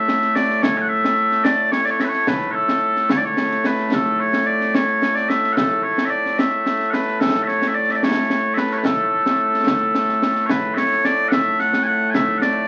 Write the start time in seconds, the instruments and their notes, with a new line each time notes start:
Already playing: bagpipes A2 A3 E5
0.08 snare
0.22 snare
0.35 bagpipes D5, snare
0.50 snare
0.62 bagpipes C#5, concert bass drum, snare
0.77 bagpipes G#5
0.82 bagpipes F#5
0.88 bagpipes E5
1.04 snare
1.31 snare
1.44 bagpipes D5, snare
1.71 bagpipes C#5, snare
1.85 bagpipes D5, snare
1.90 bagpipes C#5
2.00 bagpipes E5, snare
2.04 bagpipes B4
2.09 bagpipes C#5
2.13 snare
2.27 bagpipes B4, concert bass drum, snare
2.51 bagpipes A4 C#5
2.68 snare
2.96 snare
3.10 bagpipes C#5, concert bass drum, snare
3.17 bagpipes D5
3.25 bagpipes C#5
3.37 snare
3.51 snare
3.64 bagpipes B4, snare
3.78 snare
3.92 bagpipes A4, concert bass drum, snare
4.20 bagpipes C#5
4.33 snare
4.46 bagpipes D5
4.61 snare
4.75 bagpipes C#5, snare
5.02 snare
5.15 bagpipes D5, snare
5.29 bagpipes E5, snare
5.44 snare
5.52 bagpipes A4 F#5
5.57 concert bass drum, snare
5.83 bagpipes C#5
5.98 snare
6.05 bagpipes E5
6.10 bagpipes D5
6.26 snare
6.39 bagpipes E5, snare
6.66 snare
6.80 snare
6.90 bagpipes B4 F#5, snare
7.08 snare
7.20 bagpipes A4, concert bass drum, snare
7.43 bagpipes E5
7.48 bagpipes C#5, snare
7.62 snare
7.68 bagpipes E5
7.75 bagpipes D5
7.89 bagpipes E5, snare
7.96 bagpipes D5
8.03 bagpipes C#5, snare
8.30 snare
8.54 bagpipes B4 E5, snare
8.71 bagpipes C#5, snare
8.77 bagpipes B4
8.85 bagpipes A4, concert bass drum, snare
9.26 snare
9.54 snare
9.67 concert bass drum, snare
9.95 snare
10.09 snare
10.22 snare
10.36 snare
10.46 bagpipes C#5, concert bass drum, snare
10.50 bagpipes B4
10.74 bagpipes C#5 E5, snare
10.91 snare
11.05 bagpipes D5, snare
11.28 bagpipes E5 F#5, concert bass drum, snare
11.59 bagpipes F#5, snare
11.73 snare
11.83 bagpipes F#5 G#5
12.10 bagpipes E5 G#5
12.14 concert bass drum, snare
12.38 bagpipes F#5, snare
12.42 bagpipes D5